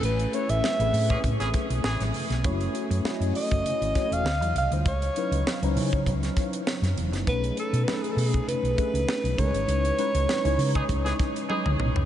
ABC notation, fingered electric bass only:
X:1
M:4/4
L:1/16
Q:"Swing 16ths" 1/4=100
K:C#m
V:1 name="Fingered electric bass" clef=bass
A,,,2 z A,,, z A,,, A,,2 A,, A,,, z B,,, A,,, A,,, z B,,, | F,,,2 z F,, z F,, z F,,, z G,,, z E,,, =D,, E,, =C,, D,, | C,,2 z C,, z C,, C,2 C,,2 z3 F,, E,,, F,,, | B,,,2 z B,, z2 B,,2 z B,,, z C,, z B,,, C,, G,,, |
C,,2 z C,, z C,, C,2 C,,2 z3 C,, B,,, C,, |]